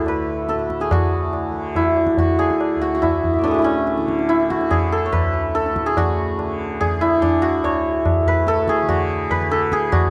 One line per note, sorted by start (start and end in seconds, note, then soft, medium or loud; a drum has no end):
0.00 2.75 D2 medium
0.00 0.53 A2 medium
0.00 1.51 D3 medium
0.00 1.76 E4 medium
0.00 0.92 F#4 medium
0.00 0.49 A4 medium
0.00 0.90 C#5 medium
0.06 2.83 B4 medium
0.06 tabla na medium
0.49 0.87 A4 medium
0.49 tabla te medium
0.54 3.35 A2 medium
0.59 tabla te soft
0.70 tabla ke medium
0.80 2.38 G#4 medium
0.80 tabla te medium
0.91 2.18 F#4 medium
0.91 tabla na loud
0.91 tabla ge medium
1.33 tabla na medium
1.51 2.13 D3 medium
1.75 3.02 E4 medium
1.75 tabla tin medium
1.75 tabla ge medium
1.96 tabla na medium
2.06 tabla ke medium
2.13 3.97 D3 medium
2.17 2.81 F#4 medium
2.17 tabla tin medium
2.17 tabla ge medium
2.39 3.51 G#4 medium
2.39 tabla na medium
2.50 tabla ke medium
2.61 tabla na medium
2.75 5.17 D2 medium
2.81 2.94 F#4 medium
2.95 3.54 F#4 medium
3.02 3.58 E4 medium
3.02 tabla na medium
3.02 tabla ge medium
3.24 tabla ge medium
3.34 5.81 A2 medium
3.34 5.63 E5 soft
3.39 3.68 C#5 soft
3.39 3.70 D5 soft
3.44 3.62 D4 medium
3.44 4.77 A4 soft
3.44 5.12 B4 soft
3.44 tabla tin medium
3.51 4.50 F#4 medium
3.51 4.70 G#4 medium
3.58 5.12 D4 medium
3.58 4.28 E4 medium
3.64 7.28 C#4 medium
3.64 tabla na medium
3.87 tabla te medium
3.97 4.57 D3 medium
3.97 tabla te medium
4.08 tabla ke medium
4.19 tabla te medium
4.29 7.01 E4 medium
4.29 tabla te medium
4.40 tabla te medium
4.50 5.97 F#4 medium
4.50 tabla ke medium
4.57 6.39 D3 soft
4.57 tabla te medium
4.71 4.98 G#4 medium
4.71 tabla tin medium
4.71 tabla ge medium
4.92 5.54 A4 medium
5.06 7.28 C#5 medium
5.12 7.87 B4 medium
5.12 tabla na medium
5.12 tabla ge medium
5.17 7.59 D2 medium
5.34 tabla te medium
5.55 5.92 A4 medium
5.55 tabla te medium
5.66 tabla te medium
5.76 tabla ke medium
5.81 8.20 A2 medium
5.86 6.80 G#4 medium
5.86 tabla te medium
5.97 7.42 F#4 medium
5.97 tabla na loud
5.97 tabla ge loud
6.39 7.00 D3 medium
6.39 tabla na medium
6.81 8.54 G#4 medium
6.81 tabla tin medium
6.81 tabla ge medium
7.00 8.82 D3 medium
7.00 10.10 E4 medium
7.00 tabla na medium
7.22 7.70 D4 medium
7.22 tabla tin medium
7.22 tabla ge medium
7.42 8.88 F#4 medium
7.59 10.00 D2 medium
7.64 10.10 C#5 medium
7.64 tabla na medium
8.06 tabla na medium
8.06 tabla ge medium
8.20 10.10 A2 medium
8.26 9.30 B4 medium
8.26 tabla tin medium
8.26 tabla ge medium
8.47 8.75 A4 loud
8.47 tabla te medium
8.68 9.57 G#4 medium
8.68 tabla ke medium
8.82 9.40 D3 medium
8.89 9.92 F#4 medium
8.89 tabla na loud
8.89 tabla ge medium
9.30 10.10 B4 medium
9.30 tabla tin medium
9.30 tabla ge medium
9.40 10.10 D3 medium
9.51 9.79 A4 medium
9.51 tabla te medium
9.72 10.10 G#4 medium
9.72 tabla ke medium
9.92 10.10 F#4 medium
9.92 tabla na loud
9.92 tabla ge medium
10.00 10.10 D2 medium